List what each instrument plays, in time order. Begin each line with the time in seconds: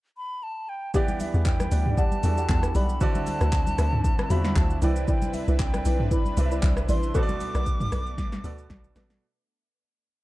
0.17 flute B5
0.43 flute A5
0.69 flute G5
0.94 grand piano E3 B3 E4 G4 D5, analog synth pad E3 G3 D4, synth stab G4 D5 F#5, flute G5, kick, low conga, shaker
1.08 high conga, shaker
1.20 flute E5, open hi-hat, high conga, shaker
1.34 log drum bass E2, synth stab G4 D5 F#5, shaker
1.46 flute G5, kick, clap, shaker
1.60 cross-stick, high conga, shaker
1.71 log drum bass D2, synth stab G4 D5 F#5, open hi-hat, shaker
1.86 mid tom
1.97 synth stab G4 D5 F#5, flute A5, kick, shaker
2.12 high conga, shaker
2.23 log drum bass E2, grand piano E3 B3 F#4 G4 A4, open hi-hat, high conga, shaker
2.37 synth stab G4 D5 F#5, shaker
2.49 log drum bass E2, kick, clap, high conga, low conga, shaker
2.63 cross-stick, shaker
2.75 log drum bass B1, synth stab G4 D5 F#5, flute B5, open hi-hat, high conga, low conga, shaker
2.89 shaker
3.01 grand piano D3 C4 E4 F#4 D5, analog synth pad D3 C4 E4, synth stab F#4 C5 E5, flute A5, kick, low conga, shaker
3.15 high conga, shaker
3.27 open hi-hat, high conga, shaker
3.41 log drum bass D2, synth stab F#4 C5 E5, cross-stick, shaker
3.52 kick, clap, shaker
3.67 high conga, shaker
3.78 log drum bass D2, synth stab F#4 C5 E5, cross-stick, open hi-hat, shaker
3.93 mid tom
4.04 kick, shaker
4.19 cross-stick, high conga, shaker
4.30 log drum bass E2, grand piano D3 C4 E4 F4 E5, synth stab F#4 C5 E5, flute B5, open hi-hat, high conga, shaker
4.38 grand piano F#4
4.44 snare, shaker
4.56 log drum bass D2, flute A5, kick, clap, high conga, low conga, shaker
4.70 shaker
4.82 log drum bass C2, grand piano C3 C4 E4 B4 D5, analog synth pad C4 D4 B4, synth stab E4 B4 D5, flute G5, open hi-hat, high conga, low conga, shaker
4.96 shaker
5.08 synth stab E4 B4 D5, flute G5, kick, low conga, shaker
5.22 high conga, shaker
5.34 flute E5, open hi-hat, high conga, shaker
5.48 log drum bass C2, synth stab E4 B4 D5, shaker
5.59 flute G5, kick, clap, shaker
5.74 cross-stick, high conga, shaker
5.85 log drum bass B1, synth stab E4 B4 D5, open hi-hat, shaker
6.00 mid tom
6.11 synth stab E4 B4 D5, flute B5, kick, shaker
6.26 high conga, shaker
6.37 log drum bass C2, grand piano C3 C4 E4 B4 D5, open hi-hat, high conga, shaker
6.45 grand piano E5
6.51 synth stab E4 B4 D5, shaker
6.63 log drum bass C2, kick, clap, high conga, low conga, shaker
6.77 cross-stick, shaker
6.89 log drum bass A1, synth stab E4 B4 D5, flute C6, open hi-hat, high conga, low conga, shaker
7.03 shaker
7.14 grand piano B2 B3 F#4 A4 C5, analog synth pad A3 B3, synth stab A4 B4 D5, flute D6, kick, low conga, shaker
7.23 grand piano D5
7.29 high conga, shaker
7.40 open hi-hat, high conga, shaker
7.54 log drum bass B1, synth stab A4 B4 D5, cross-stick, shaker
7.66 kick, low conga, shaker
7.80 mid tom, high conga, shaker
7.92 log drum bass B1, synth stab A4 B4 D5, cross-stick, open hi-hat, shaker
8.06 shaker
8.18 kick, snare, shaker
8.32 snare, high conga, shaker
8.44 log drum bass D2, grand piano B2 B3 F#4 A4 D5, synth stab A4 B4 D5, open hi-hat, high conga, shaker
8.58 shaker
8.70 log drum bass B1, grand piano D5, kick, snare, high conga, low conga, shaker
8.84 shaker
8.95 log drum bass A1, grand piano B2 B3 F#4 A4 D5, synth stab A4 B4 D5, snare, open hi-hat, high conga, low conga, shaker
9.10 snare, shaker